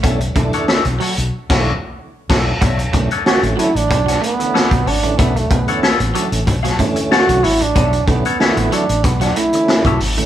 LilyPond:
<<
  \new Staff \with { instrumentName = "Clean electric guitar" } { \time 4/4 \key b \minor \tempo 4 = 93 <d' a' cis'' e''>16 r8 <d' a' cis'' fis''>16 <d' a' cis'' e''>16 r16 <d' a' cis'' fis''>16 r8 <d' a' cis'' fis''>8 r8. <d' a' cis'' fis''>8 | <d' a' cis'' e''>16 r8 <d' a' cis'' fis''>16 <d' a' cis'' e''>16 r16 <d' a' cis'' fis''>16 r8 <d' a' cis'' fis''>16 r8 <d' a' cis'' fis''>16 r16 <d' a' cis'' fis''>16 r16 | <d' a' cis'' e''>16 r8 <d' a' cis'' fis''>16 <d' a' cis'' e''>16 r16 <d' a' cis'' fis''>16 r8 <d' a' cis'' fis''>16 r8 <d' a' cis'' fis''>16 r16 <d' a' cis'' fis''>16 r16 | <d' a' cis'' e''>16 r8 <d' a' cis'' fis''>16 <d' a' cis'' e''>16 r16 <d' a' cis'' fis''>16 r8 <d' a' cis'' fis''>16 r8. <d' a' cis'' e''>16 r8 | }
  \new Staff \with { instrumentName = "Trombone" } { \time 4/4 \key b \minor r1 | r4 fis'8 e'16 d'8. b4 d'8 | b16 a16 b4 r4. fis'8 e'16 d'16~ | d'8 b4 d'8 b16 d'16 e'4 r8 | }
  \new Staff \with { instrumentName = "Clean electric guitar" } { \time 4/4 \key b \minor b16 r16 a16 r8. fis16 r2 r16 | b16 r16 a16 r8. fis16 r8 fis16 a16 r8 fis16 r16 a16 | b16 r16 a16 r8. fis16 r8 fis16 a16 r8 fis16 r16 a16 | b16 r16 a16 r8. fis16 r8 fis16 a16 r8 fis16 r16 a16 | }
  \new Staff \with { instrumentName = "Tonewheel organ" } { \time 4/4 \key b \minor <d e a cis'>16 r16 <d e a d'>8. r4 <d e a e'>8 r8. <e' a'>8 | r8 <d e a cis'>16 r16 <d e a cis'>8. r8. <a cis'>16 <d e a cis'>8 r8 <d e a cis'>16~ | <d e a cis'>16 r8 <d e a cis'>16 r8 <d e a cis'>8 r8 <cis d e a cis'>4 r8 | r8 <d e a cis'>16 r16 <d e a e'>8. r8. <a cis'>16 <d e a cis'>8 r8 <d e a cis'>16 | }
  \new Staff \with { instrumentName = "Fingered electric bass" } { \clef bass \time 4/4 \key b \minor b,,8 b,,16 r8 b,,16 r16 b,,16 r16 b,,8 r8. b,,8 | b,,8 b,,16 r8 a,,16 r16 a,,16 b,,8 r8. b,,16 gis,,16 a,,16 | b,,8 b,,16 r8 a,,16 r16 a,,16 b,,8 r8. b,,16 gis,,16 a,,16 | b,,8 b,,16 r8 a,,16 r16 a,,16 b,,8 r8. b,,16 gis,,16 a,,16 | }
  \new DrumStaff \with { instrumentName = "Drums" } \drummode { \time 4/4 <hh bd>16 hh16 <hh bd>16 hh16 sn16 hh16 hho16 hh16 r16 <cymc bd sn>8. r8 <cymc bd sn>8 | <hh bd>16 hh16 <hh bd>16 hh16 sn16 hh16 hh16 hh16 <hh bd>16 <hh sn>16 hh16 hh16 sn16 <hh bd>16 hho16 hh16 | <hh bd>16 hh16 <hh bd>16 hh16 sn16 hh16 hh16 hh16 <hh bd>16 <hh sn>16 <hh bd>16 hh16 sn16 hh16 hho16 hh16 | <hh bd>16 hh16 <hh bd>16 hh16 sn16 hh16 hh16 hh16 <hh bd>16 <hh sn>16 hh16 hh16 sn16 <hh bd>16 hho16 hh16 | }
>>